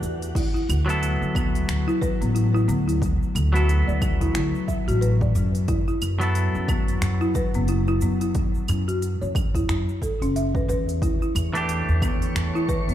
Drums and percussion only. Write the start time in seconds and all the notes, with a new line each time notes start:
0.03 open hi-hat, shaker
0.22 open hi-hat, shaker
0.35 kick, open hi-hat, crash, shaker
0.56 shaker
0.70 open hi-hat, claves, shaker
0.89 open hi-hat, shaker
1.03 open hi-hat, shaker
1.22 shaker
1.35 kick, claves, shaker
1.55 open hi-hat, shaker
1.69 finger snap, open hi-hat, shaker
1.89 shaker
2.02 kick, open hi-hat, shaker
2.22 open hi-hat, shaker
2.36 open hi-hat, shaker
2.56 shaker
2.69 open hi-hat, shaker
2.89 open hi-hat, shaker
3.02 kick, open hi-hat, shaker
3.23 shaker
3.36 open hi-hat, claves, shaker
3.55 open hi-hat, shaker
3.69 open hi-hat, shaker
3.89 shaker
4.02 kick, claves, shaker
4.21 kick, open hi-hat, shaker
4.35 finger snap, open hi-hat, shaker
4.55 shaker
4.68 kick, open hi-hat, shaker
4.88 open hi-hat, shaker
5.02 open hi-hat, shaker
5.21 kick, shaker
5.35 open hi-hat, shaker
5.55 open hi-hat, shaker
5.68 kick, open hi-hat, shaker
5.88 shaker
6.02 open hi-hat, claves, shaker
6.21 open hi-hat, shaker
6.35 open hi-hat, shaker
6.55 shaker
6.68 kick, claves, shaker
6.88 open hi-hat, shaker
7.02 finger snap, open hi-hat, shaker
7.21 shaker
7.35 kick, open hi-hat, shaker
7.54 open hi-hat, shaker
7.68 open hi-hat, shaker
7.87 shaker
8.01 open hi-hat, shaker
8.21 open hi-hat, shaker
8.35 kick, open hi-hat, shaker
8.55 shaker
8.68 open hi-hat, claves, shaker
8.89 open hi-hat, shaker
9.02 open hi-hat, shaker
9.22 shaker
9.35 kick, claves, shaker
9.55 kick, open hi-hat, shaker
9.69 finger snap, open hi-hat, shaker
9.89 shaker
10.02 kick, open hi-hat, shaker
10.22 open hi-hat, shaker
10.36 open hi-hat, shaker
10.55 kick, shaker
10.69 open hi-hat, shaker
10.89 open hi-hat, shaker
11.02 kick, open hi-hat, shaker
11.22 shaker
11.36 open hi-hat, claves, shaker
11.55 open hi-hat, shaker
11.69 open hi-hat, shaker
11.89 shaker
12.02 kick, claves, shaker
12.22 open hi-hat, shaker
12.36 finger snap, open hi-hat, shaker
12.56 shaker
12.69 kick, open hi-hat, shaker
12.89 open hi-hat, shaker